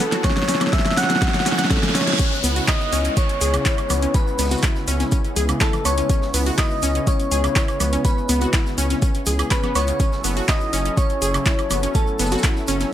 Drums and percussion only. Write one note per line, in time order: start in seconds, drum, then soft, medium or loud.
0.12 snare medium
0.12 closed hi-hat medium
0.24 kick loud
0.24 snare loud
0.24 closed hi-hat medium
0.30 snare medium
0.37 snare medium
0.37 closed hi-hat soft
0.43 snare medium
0.49 snare loud
0.49 open hi-hat loud
0.55 snare medium
0.61 snare medium
0.61 closed hi-hat medium
0.61 high conga medium
0.61 high woodblock medium
0.67 snare medium
0.73 kick loud
0.73 snare loud
0.73 closed hi-hat medium
0.79 snare medium
0.86 snare medium
0.86 closed hi-hat soft
0.91 snare loud
0.97 snare loud
0.97 open hi-hat medium
0.97 high conga medium
1.04 snare medium
1.10 snare medium
1.10 closed hi-hat medium
1.10 high conga medium
1.16 snare medium
1.22 kick loud
1.22 snare loud
1.22 closed hi-hat medium
1.28 snare medium
1.34 snare medium
1.34 closed hi-hat soft
1.40 snare loud
1.46 snare loud
1.46 open hi-hat loud
1.46 low conga medium
1.52 snare loud
1.59 snare medium
1.59 closed hi-hat medium
1.65 snare loud
1.71 kick loud
1.71 snare loud
1.71 closed hi-hat medium
1.77 snare medium
1.83 snare loud
1.83 closed hi-hat soft
1.83 low conga medium
1.89 snare loud
1.95 snare loud
1.95 open hi-hat medium
2.01 snare loud
2.07 snare loud
2.07 closed hi-hat medium
2.13 snare loud
2.19 kick loud
2.19 closed hi-hat medium
2.19 crash loud
2.19 shaker soft
2.19 shaker medium
2.32 snare medium
2.32 shaker soft
2.43 open hi-hat medium
2.43 open hi-hat loud
2.43 shaker medium
2.56 closed hi-hat medium
2.56 shaker soft
2.67 kick loud
2.67 snare loud
2.67 clap loud
2.67 closed hi-hat medium
2.67 shaker medium
2.67 shaker soft
2.81 shaker soft
2.92 snare soft
2.92 open hi-hat medium
2.92 shaker medium
3.04 closed hi-hat soft
3.04 closed hi-hat medium
3.04 shaker soft
3.17 kick loud
3.17 closed hi-hat medium
3.17 shaker medium
3.29 closed hi-hat soft
3.29 shaker soft
3.41 open hi-hat loud
3.41 shaker medium
3.54 closed hi-hat medium
3.54 high woodblock medium
3.54 shaker soft
3.65 kick loud
3.65 snare loud
3.65 clap loud
3.65 closed hi-hat medium
3.65 shaker soft
3.65 shaker medium
3.78 closed hi-hat soft
3.78 high woodblock medium
3.78 shaker soft
3.90 open hi-hat medium
3.90 low conga medium
3.90 high woodblock medium
3.90 shaker medium
4.02 closed hi-hat medium
4.02 shaker soft
4.14 kick loud
4.14 closed hi-hat medium
4.14 shaker medium
4.27 shaker soft
4.39 snare medium
4.39 open hi-hat loud
4.39 shaker loud
4.39 shaker medium
4.45 snare medium
4.45 shaker medium
4.51 snare loud
4.51 closed hi-hat medium
4.51 high conga medium
4.51 shaker soft
4.51 shaker medium
4.57 snare medium
4.57 shaker medium
4.62 kick loud
4.62 snare loud
4.62 clap loud
4.62 closed hi-hat medium
4.62 shaker medium
4.76 snare soft
4.76 shaker soft
4.88 open hi-hat medium
4.88 high conga medium
4.88 shaker medium
5.00 snare medium
5.00 closed hi-hat medium
5.00 high conga medium
5.00 shaker soft
5.11 kick loud
5.11 closed hi-hat medium
5.11 shaker medium
5.24 closed hi-hat soft
5.24 shaker soft
5.36 open hi-hat loud
5.36 low conga medium
5.36 shaker medium
5.49 closed hi-hat medium
5.49 closed hi-hat soft
5.49 high woodblock medium
5.49 shaker soft
5.61 kick loud
5.61 snare loud
5.61 clap loud
5.61 closed hi-hat medium
5.61 shaker medium
5.73 closed hi-hat soft
5.73 low conga loud
5.73 high woodblock medium
5.73 shaker soft
5.85 open hi-hat loud
5.85 high woodblock medium
5.85 shaker loud
5.85 shaker medium
5.98 closed hi-hat medium
5.98 shaker soft
6.09 kick loud
6.09 closed hi-hat medium
6.09 shaker medium
6.22 snare medium
6.22 shaker soft
6.34 open hi-hat medium
6.34 open hi-hat loud
6.34 shaker loud
6.46 closed hi-hat medium
6.46 shaker soft
6.58 kick loud
6.58 snare loud
6.58 clap loud
6.58 closed hi-hat medium
6.58 shaker medium
6.58 shaker soft
6.71 shaker soft
6.82 snare soft
6.82 open hi-hat medium
6.82 shaker loud
6.82 shaker medium
6.95 closed hi-hat soft
6.95 shaker soft
7.07 kick loud
7.07 closed hi-hat medium
7.07 shaker medium
7.20 closed hi-hat soft
7.20 shaker soft
7.31 open hi-hat loud
7.31 shaker medium
7.44 closed hi-hat medium
7.44 high woodblock medium
7.44 shaker soft
7.56 kick loud
7.56 snare loud
7.56 clap loud
7.56 closed hi-hat medium
7.56 shaker medium
7.68 closed hi-hat soft
7.68 high woodblock medium
7.68 shaker soft
7.80 open hi-hat medium
7.80 low conga medium
7.80 high woodblock medium
7.80 shaker medium
7.93 closed hi-hat medium
7.93 shaker soft
8.05 kick loud
8.05 closed hi-hat medium
8.05 shaker medium
8.18 shaker soft
8.29 open hi-hat loud
8.29 shaker loud
8.29 shaker medium
8.41 closed hi-hat soft
8.41 high conga medium
8.41 shaker soft
8.53 kick loud
8.53 snare loud
8.53 clap loud
8.53 closed hi-hat medium
8.53 shaker medium
8.66 snare medium
8.66 shaker soft
8.78 open hi-hat medium
8.78 high conga medium
8.78 shaker loud
8.78 shaker medium
8.90 snare soft
8.90 closed hi-hat soft
8.90 high conga medium
8.90 shaker soft
9.02 kick loud
9.02 closed hi-hat medium
9.02 shaker medium
9.14 closed hi-hat soft
9.14 shaker soft
9.26 open hi-hat loud
9.26 low conga medium
9.26 shaker medium
9.26 shaker loud
9.39 closed hi-hat soft
9.39 high woodblock medium
9.39 shaker soft
9.50 kick loud
9.50 snare loud
9.50 clap loud
9.50 closed hi-hat medium
9.50 shaker medium
9.63 closed hi-hat soft
9.63 low conga loud
9.63 high woodblock medium
9.63 shaker soft
9.75 open hi-hat loud
9.75 high woodblock medium
9.75 shaker medium
9.87 closed hi-hat medium
9.87 shaker soft
10.00 kick loud
10.00 closed hi-hat medium
10.00 shaker medium
10.00 shaker soft
10.12 snare medium
10.12 shaker soft
10.24 open hi-hat loud
10.24 open hi-hat medium
10.24 shaker loud
10.37 closed hi-hat soft
10.37 shaker soft
10.48 kick loud
10.48 snare loud
10.48 clap loud
10.48 closed hi-hat medium
10.48 shaker medium
10.48 shaker soft
10.61 shaker soft
10.73 snare soft
10.73 open hi-hat medium
10.73 shaker medium
10.85 closed hi-hat soft
10.85 shaker soft
10.97 kick loud
10.97 closed hi-hat medium
10.97 shaker medium
11.10 closed hi-hat soft
11.10 shaker soft
11.22 open hi-hat loud
11.22 shaker loud
11.22 shaker medium
11.34 closed hi-hat soft
11.34 high woodblock medium
11.34 shaker soft
11.46 kick loud
11.46 snare loud
11.46 clap loud
11.46 closed hi-hat medium
11.46 shaker medium
11.59 closed hi-hat soft
11.59 high woodblock medium
11.59 shaker soft
11.70 open hi-hat medium
11.70 low conga medium
11.70 high woodblock medium
11.70 shaker medium
11.83 closed hi-hat medium
11.83 shaker soft
11.95 kick loud
11.95 closed hi-hat medium
11.95 shaker medium
12.07 shaker soft
12.19 snare medium
12.19 open hi-hat loud
12.19 shaker medium
12.25 snare medium
12.25 shaker medium
12.31 snare loud
12.31 closed hi-hat medium
12.31 high conga medium
12.31 shaker medium
12.31 shaker soft
12.38 snare medium
12.38 shaker medium
12.43 kick loud
12.43 snare loud
12.43 clap loud
12.43 closed hi-hat medium
12.43 shaker medium
12.43 shaker soft
12.56 snare soft
12.56 shaker soft
12.68 open hi-hat medium
12.68 high conga medium
12.68 shaker medium
12.80 snare medium
12.80 closed hi-hat medium
12.80 high conga medium
12.80 shaker soft